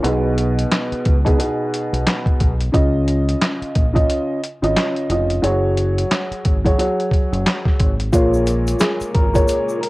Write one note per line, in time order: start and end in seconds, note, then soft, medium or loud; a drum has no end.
0.03 0.64 B1 loud
0.03 1.13 B2 loud
0.03 1.14 B3 medium
0.03 1.14 D#4 medium
0.03 1.14 G#4 loud
0.03 closed hi-hat medium
0.38 closed hi-hat medium
0.59 closed hi-hat medium
0.71 snare loud
0.71 clap medium
0.71 closed hi-hat medium
0.92 muted fingered electric bass stroke soft
0.92 closed hi-hat soft
1.05 1.36 C#2 medium
1.05 kick loud
1.05 closed hi-hat medium
1.25 1.37 B2 medium
1.25 1.37 B3 medium
1.25 1.38 D#4 medium
1.25 1.39 G#4 loud
1.25 kick medium
1.25 closed hi-hat medium
1.38 2.49 B2 medium
1.38 2.49 B3 medium
1.38 2.49 D#4 medium
1.38 2.50 G#4 medium
1.38 closed hi-hat loud
1.74 closed hi-hat medium
1.93 2.05 B1 medium
1.93 closed hi-hat soft
2.07 snare loud
2.07 clap medium
2.07 closed hi-hat loud
2.26 kick medium
2.26 closed hi-hat soft
2.40 2.70 B1 medium
2.40 kick medium
2.40 closed hi-hat medium
2.61 closed hi-hat soft
2.72 3.34 C#2 loud
2.72 3.83 C#3 medium
2.72 3.83 C#4 medium
2.72 3.84 F4 medium
2.72 3.84 D#5 loud
2.72 kick loud
2.72 closed hi-hat medium
3.08 closed hi-hat medium
3.29 closed hi-hat medium
3.41 snare loud
3.41 clap medium
3.41 closed hi-hat medium
3.62 muted fingered electric bass stroke soft
3.62 closed hi-hat soft
3.75 4.05 A#1 medium
3.75 kick loud
3.75 closed hi-hat medium
3.93 4.38 C#3 loud
3.93 4.38 C#4 medium
3.93 4.39 F4 medium
3.93 4.39 D#5 loud
3.93 kick medium
3.93 closed hi-hat medium
4.10 closed hi-hat loud
4.44 closed hi-hat medium
4.62 4.74 G#1 medium
4.62 5.06 C#3 medium
4.62 5.06 C#4 medium
4.62 5.07 F4 medium
4.62 5.07 D#5 loud
4.62 closed hi-hat soft
4.77 snare loud
4.77 clap medium
4.77 closed hi-hat loud
4.96 closed hi-hat soft
5.10 5.40 F1 medium
5.10 5.41 C#3 medium
5.10 5.41 C#4 medium
5.10 5.42 F4 medium
5.10 5.42 D#5 medium
5.10 closed hi-hat medium
5.30 closed hi-hat medium
5.42 6.03 F#1 loud
5.42 6.53 F#3 medium
5.42 6.53 F#4 medium
5.42 6.53 G#4 medium
5.42 6.54 C#5 loud
5.42 closed hi-hat medium
5.77 closed hi-hat medium
5.98 closed hi-hat medium
6.11 snare loud
6.11 clap medium
6.11 closed hi-hat medium
6.31 muted fingered electric bass stroke soft
6.31 closed hi-hat soft
6.45 6.75 G#1 medium
6.45 kick medium
6.45 closed hi-hat medium
6.64 6.77 F#3 medium
6.64 6.78 F#4 medium
6.64 6.78 G#4 medium
6.64 6.79 C#5 loud
6.64 kick medium
6.64 closed hi-hat medium
6.78 7.88 F#3 medium
6.78 7.89 F#4 medium
6.78 7.89 G#4 medium
6.78 7.89 C#5 medium
6.78 closed hi-hat loud
7.00 closed hi-hat soft
7.11 kick medium
7.11 closed hi-hat medium
7.32 7.44 F#1 loud
7.32 closed hi-hat soft
7.46 snare loud
7.46 clap loud
7.46 closed hi-hat loud
7.65 kick medium
7.65 snare soft
7.80 8.10 G#1 medium
7.80 kick medium
7.80 closed hi-hat medium
8.00 closed hi-hat medium
8.13 8.73 A#1 loud
8.13 9.23 A#2 loud
8.13 9.89 C#3 medium
8.13 9.89 G#3 medium
8.13 9.23 A#3 loud
8.13 9.89 A#3 medium
8.13 8.76 F4 loud
8.13 9.24 G#4 medium
8.13 9.24 C#5 loud
8.13 kick loud
8.13 closed hi-hat medium
8.13 shaker medium
8.34 shaker soft
8.47 closed hi-hat medium
8.47 shaker soft
8.67 closed hi-hat medium
8.67 shaker medium
8.79 9.11 G#4 medium
8.79 snare loud
8.79 clap medium
8.79 closed hi-hat medium
8.79 shaker medium
9.01 muted fingered electric bass stroke soft
9.01 closed hi-hat soft
9.01 shaker medium
9.14 9.45 G#1 medium
9.14 9.78 A#4 medium
9.14 kick medium
9.14 closed hi-hat medium
9.33 9.78 A#2 medium
9.33 9.78 A#3 medium
9.33 9.78 G#4 medium
9.33 9.79 C#5 loud
9.33 kick medium
9.33 closed hi-hat medium
9.33 shaker medium
9.48 closed hi-hat loud
9.48 shaker medium
9.69 shaker soft
9.81 9.89 A#4 medium
9.81 closed hi-hat medium